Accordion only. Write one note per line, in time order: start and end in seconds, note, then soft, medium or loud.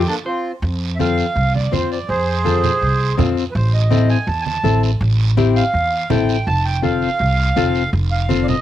0.08 0.17 A#3 medium
0.08 0.16 D4 medium
0.26 0.52 C4 medium
0.26 0.52 F4 medium
0.96 0.98 E5 medium
1.01 1.53 F5 loud
1.55 1.72 D5 medium
1.73 1.90 C5 medium
1.92 2.09 D5 medium
2.08 3.14 G#4 medium
2.08 3.15 C5 loud
3.51 3.54 B4 medium
3.56 3.73 C5 medium
3.74 4.09 D#5 medium
4.09 4.27 G#5 medium
4.27 4.44 A5 medium
4.41 4.44 G#5 medium
4.46 4.82 A5 medium
5.56 6.09 F5 medium
6.11 6.46 G5 medium
6.47 6.65 A5 loud
6.65 6.83 G5 medium
6.84 7.90 F5 loud
8.11 8.47 F5 medium
8.43 8.46 D5 medium
8.48 8.61 D#5 medium